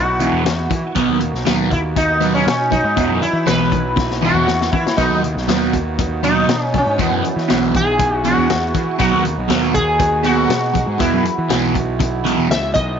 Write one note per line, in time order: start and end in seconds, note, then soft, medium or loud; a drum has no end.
0.00 0.28 B1 medium
0.00 8.95 B3 medium
0.00 0.92 E4 medium
0.00 1.16 F#4 medium
0.00 8.95 F#4 medium
0.19 0.43 E2 medium
0.19 0.44 B2 medium
0.19 0.45 E3 medium
0.19 closed hi-hat medium
0.33 0.67 E2 medium
0.45 muted distorted electric guitar stroke soft
0.45 snare loud
0.45 closed hi-hat loud
0.70 0.82 E3 medium
0.70 muted distorted electric guitar stroke medium
0.70 kick medium
0.70 closed hi-hat medium
0.95 1.07 B1 medium
0.95 1.20 B2 medium
0.95 1.19 F#3 medium
0.95 1.19 B3 medium
0.95 2.95 D#4 medium
0.95 kick loud
0.95 closed hi-hat medium
1.08 1.31 D#2 medium
1.20 muted distorted electric guitar stroke medium
1.20 closed hi-hat medium
1.33 1.44 B1 medium
1.33 snare soft
1.45 2.42 D#2 medium
1.45 1.70 B2 medium
1.45 1.69 F#3 medium
1.45 1.69 B3 medium
1.45 snare loud
1.45 closed hi-hat medium
1.70 1.79 E4 medium
1.70 muted distorted electric guitar stroke medium
1.70 kick medium
1.70 closed hi-hat medium
1.96 2.34 D#4 medium
1.96 muted distorted electric guitar stroke soft
1.96 kick loud
1.96 closed hi-hat medium
2.21 2.44 B2 medium
2.21 2.45 F#3 medium
2.21 2.46 B3 medium
2.21 closed hi-hat medium
2.34 2.71 C#4 medium
2.46 2.81 B2 medium
2.46 muted distorted electric guitar stroke soft
2.46 snare loud
2.46 closed hi-hat medium
2.71 3.21 D#4 medium
2.71 muted distorted electric guitar stroke soft
2.71 kick medium
2.71 closed hi-hat medium
2.84 2.95 G#2 loud
2.96 3.21 E2 medium
2.96 3.08 E2 medium
2.96 3.21 B2 medium
2.96 3.20 E3 medium
2.96 4.96 E4 medium
2.96 kick loud
2.96 closed hi-hat medium
3.09 3.20 F#2 medium
3.21 3.48 E4 loud
3.21 muted distorted electric guitar stroke soft
3.21 closed hi-hat medium
3.33 3.45 E3 medium
3.46 4.30 B1 medium
3.46 3.71 E2 medium
3.46 3.71 B2 medium
3.46 3.70 E3 medium
3.46 3.94 B4 medium
3.46 snare loud
3.46 closed hi-hat medium
3.72 muted distorted electric guitar stroke soft
3.72 kick medium
3.72 closed hi-hat medium
3.96 muted distorted electric guitar stroke soft
3.96 kick loud
3.96 snare medium
4.11 snare medium
4.21 4.46 E2 medium
4.21 4.46 B2 medium
4.21 4.47 E3 medium
4.21 4.72 F#4 loud
4.21 mid tom medium
4.34 4.69 E2 medium
4.34 mid tom medium
4.47 muted distorted electric guitar stroke soft
4.47 snare medium
4.61 snare medium
4.72 4.84 E3 medium
4.72 4.97 E4 medium
4.72 muted distorted electric guitar stroke soft
4.72 kick loud
4.87 snare medium
4.97 5.09 B1 medium
4.97 5.23 B2 medium
4.97 5.22 F#3 medium
4.97 5.21 B3 medium
4.97 5.21 D#4 medium
4.97 6.97 D#4 medium
4.97 kick loud
4.97 closed hi-hat medium
5.10 5.33 D#2 medium
5.23 muted distorted electric guitar stroke medium
5.23 closed hi-hat medium
5.35 5.47 B1 medium
5.35 snare soft
5.48 6.45 D#2 medium
5.48 5.73 B2 medium
5.48 5.73 F#3 medium
5.48 5.73 B3 medium
5.48 snare loud
5.48 closed hi-hat loud
5.73 muted distorted electric guitar stroke soft
5.73 kick medium
5.73 closed hi-hat medium
5.99 muted distorted electric guitar stroke soft
5.99 kick loud
5.99 closed hi-hat medium
6.23 6.48 B2 medium
6.23 6.48 F#3 medium
6.23 6.48 B3 medium
6.23 6.75 D#4 loud
6.23 closed hi-hat medium
6.48 6.83 B2 medium
6.48 muted distorted electric guitar stroke soft
6.48 snare loud
6.48 closed hi-hat medium
6.74 7.01 C#4 medium
6.74 muted distorted electric guitar stroke soft
6.74 kick medium
6.74 closed hi-hat medium
6.86 6.98 G#2 medium
6.98 7.24 E2 medium
6.98 7.10 E2 medium
6.98 7.23 B2 medium
6.98 7.22 E3 medium
6.98 7.23 B3 medium
6.98 8.97 E4 medium
6.98 kick loud
6.98 closed hi-hat medium
7.12 7.23 F#2 medium
7.24 muted distorted electric guitar stroke medium
7.24 closed hi-hat medium
7.36 7.48 E3 medium
7.36 snare soft
7.48 8.33 B1 medium
7.48 7.74 E2 medium
7.48 7.73 B2 medium
7.48 7.73 E3 loud
7.48 snare loud
7.48 closed hi-hat medium
7.74 8.27 G#4 loud
7.74 muted distorted electric guitar stroke soft
7.74 kick medium
7.74 closed hi-hat medium
7.99 muted distorted electric guitar stroke soft
7.99 kick loud
7.99 closed hi-hat medium
8.24 8.47 E2 medium
8.24 8.48 B2 medium
8.24 8.48 E3 medium
8.24 8.98 F#4 medium
8.24 closed hi-hat medium
8.38 8.72 E2 medium
8.48 muted distorted electric guitar stroke soft
8.48 snare loud
8.48 closed hi-hat medium
8.74 8.86 E3 medium
8.74 muted distorted electric guitar stroke medium
8.74 kick medium
8.74 closed hi-hat medium
8.98 9.11 B1 medium
8.98 9.24 B2 medium
8.98 9.23 F#3 medium
8.98 13.00 B3 medium
8.98 9.22 B3 loud
8.98 10.97 D#4 medium
8.98 13.00 F#4 medium
8.98 9.23 F#4 medium
8.98 kick loud
8.98 closed hi-hat medium
9.12 9.35 D#2 medium
9.23 muted distorted electric guitar stroke medium
9.23 closed hi-hat medium
9.38 9.49 B1 medium
9.48 10.46 D#2 loud
9.48 9.74 B2 medium
9.48 9.72 F#3 medium
9.48 9.72 B3 medium
9.48 snare loud
9.48 closed hi-hat loud
9.73 10.26 G#4 loud
9.73 muted distorted electric guitar stroke soft
9.73 kick medium
9.73 closed hi-hat medium
9.99 muted distorted electric guitar stroke soft
9.99 kick loud
9.99 closed hi-hat loud
10.23 10.48 B2 medium
10.23 10.48 F#3 medium
10.23 10.49 B3 medium
10.23 11.00 F#4 medium
10.23 closed hi-hat medium
10.49 10.84 B2 medium
10.49 muted distorted electric guitar stroke soft
10.49 snare loud
10.49 closed hi-hat loud
10.73 muted distorted electric guitar stroke soft
10.73 kick medium
10.73 closed hi-hat medium
10.87 10.99 G#2 medium
10.98 11.24 E2 medium
10.98 11.12 E2 medium
10.98 11.23 B2 medium
10.98 11.22 E3 medium
10.98 12.97 E4 medium
10.98 11.23 E4 medium
10.98 kick loud
10.98 closed hi-hat medium
11.13 11.24 F#2 medium
11.23 muted distorted electric guitar stroke medium
11.23 closed hi-hat medium
11.38 11.49 E3 medium
11.48 12.34 B1 medium
11.48 11.74 E2 medium
11.48 11.73 B2 medium
11.48 11.73 E3 medium
11.48 snare loud
11.48 closed hi-hat medium
11.74 muted distorted electric guitar stroke soft
11.74 kick medium
11.74 closed hi-hat medium
11.99 muted distorted electric guitar stroke soft
11.99 kick loud
11.99 closed hi-hat loud
12.24 12.48 E2 medium
12.24 12.48 B2 medium
12.24 12.49 E3 medium
12.24 closed hi-hat medium
12.38 12.49 E2 medium
12.49 12.72 C#2 medium
12.49 12.73 E5 loud
12.49 muted distorted electric guitar stroke soft
12.49 snare loud
12.49 closed hi-hat medium
12.74 12.98 B1 medium
12.74 12.99 D#5 medium
12.74 muted distorted electric guitar stroke soft
12.74 kick medium
12.74 closed hi-hat medium